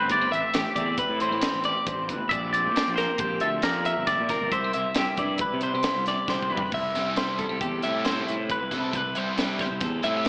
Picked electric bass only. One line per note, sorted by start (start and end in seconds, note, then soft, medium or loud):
0.00 0.26 G1 medium
0.32 0.41 A1 loud
0.55 0.63 A1 loud
0.77 0.94 E2 medium
1.09 1.27 A2 medium
1.31 1.40 A2 medium
1.54 1.72 A1 medium
1.87 2.09 A1 loud
2.09 2.18 G1 medium
2.31 2.67 A#1 loud
2.66 2.74 A#2 medium
2.88 3.05 A#1 medium
3.20 3.38 A#1 loud
3.42 3.60 D2 medium
3.64 3.91 F2 medium
3.97 4.15 G1 medium
4.20 4.29 A#2 medium
4.41 4.50 G1 medium
4.52 4.70 C2 loud
4.76 4.84 C2 loud
4.97 5.06 C2 medium
5.18 5.36 G2 medium
5.53 5.70 C3 medium
5.74 5.83 C3 medium
5.96 6.14 C2 medium
6.29 6.52 C2 loud
6.51 6.60 G2 medium
6.72 6.90 C2 medium
6.97 7.40 C2 medium
7.52 7.60 C2 medium
7.61 7.79 E2 medium
7.86 8.20 A2 medium
8.30 8.55 A2 medium
8.62 8.70 C2 medium
8.72 8.90 C3 medium
8.94 9.11 C2 medium
9.16 9.60 C2 medium
9.71 9.80 C2 medium
9.82 9.99 E2 medium
10.05 10.29 A2 medium